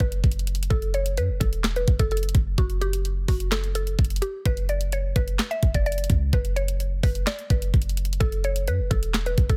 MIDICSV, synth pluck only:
0, 0, Header, 1, 2, 480
1, 0, Start_track
1, 0, Tempo, 468750
1, 723, Time_signature, 4, 2, 24, 8
1, 9799, End_track
2, 0, Start_track
2, 0, Title_t, "Synth pluck"
2, 0, Program_c, 0, 84
2, 4, Note_on_c, 0, 71, 75
2, 682, Note_off_c, 0, 71, 0
2, 720, Note_on_c, 0, 69, 108
2, 925, Note_off_c, 0, 69, 0
2, 965, Note_on_c, 0, 73, 76
2, 1168, Note_off_c, 0, 73, 0
2, 1205, Note_on_c, 0, 71, 78
2, 1408, Note_off_c, 0, 71, 0
2, 1437, Note_on_c, 0, 69, 68
2, 1778, Note_off_c, 0, 69, 0
2, 1806, Note_on_c, 0, 71, 75
2, 2009, Note_off_c, 0, 71, 0
2, 2043, Note_on_c, 0, 69, 86
2, 2145, Note_off_c, 0, 69, 0
2, 2167, Note_on_c, 0, 69, 81
2, 2616, Note_off_c, 0, 69, 0
2, 2644, Note_on_c, 0, 66, 85
2, 2847, Note_off_c, 0, 66, 0
2, 2882, Note_on_c, 0, 67, 84
2, 3086, Note_off_c, 0, 67, 0
2, 3364, Note_on_c, 0, 66, 83
2, 3567, Note_off_c, 0, 66, 0
2, 3602, Note_on_c, 0, 69, 87
2, 3806, Note_off_c, 0, 69, 0
2, 3842, Note_on_c, 0, 69, 71
2, 4293, Note_off_c, 0, 69, 0
2, 4320, Note_on_c, 0, 67, 84
2, 4525, Note_off_c, 0, 67, 0
2, 4567, Note_on_c, 0, 71, 113
2, 4769, Note_off_c, 0, 71, 0
2, 4805, Note_on_c, 0, 74, 75
2, 5008, Note_off_c, 0, 74, 0
2, 5047, Note_on_c, 0, 73, 86
2, 5249, Note_off_c, 0, 73, 0
2, 5283, Note_on_c, 0, 71, 84
2, 5621, Note_off_c, 0, 71, 0
2, 5641, Note_on_c, 0, 76, 92
2, 5846, Note_off_c, 0, 76, 0
2, 5886, Note_on_c, 0, 74, 78
2, 5987, Note_off_c, 0, 74, 0
2, 6003, Note_on_c, 0, 74, 86
2, 6454, Note_off_c, 0, 74, 0
2, 6489, Note_on_c, 0, 71, 74
2, 6690, Note_off_c, 0, 71, 0
2, 6721, Note_on_c, 0, 73, 82
2, 6926, Note_off_c, 0, 73, 0
2, 7203, Note_on_c, 0, 71, 77
2, 7407, Note_off_c, 0, 71, 0
2, 7444, Note_on_c, 0, 74, 89
2, 7647, Note_off_c, 0, 74, 0
2, 7684, Note_on_c, 0, 71, 73
2, 8362, Note_off_c, 0, 71, 0
2, 8400, Note_on_c, 0, 69, 106
2, 8605, Note_off_c, 0, 69, 0
2, 8647, Note_on_c, 0, 73, 75
2, 8850, Note_off_c, 0, 73, 0
2, 8887, Note_on_c, 0, 71, 78
2, 9089, Note_off_c, 0, 71, 0
2, 9120, Note_on_c, 0, 69, 66
2, 9460, Note_off_c, 0, 69, 0
2, 9486, Note_on_c, 0, 71, 81
2, 9689, Note_off_c, 0, 71, 0
2, 9724, Note_on_c, 0, 69, 86
2, 9799, Note_off_c, 0, 69, 0
2, 9799, End_track
0, 0, End_of_file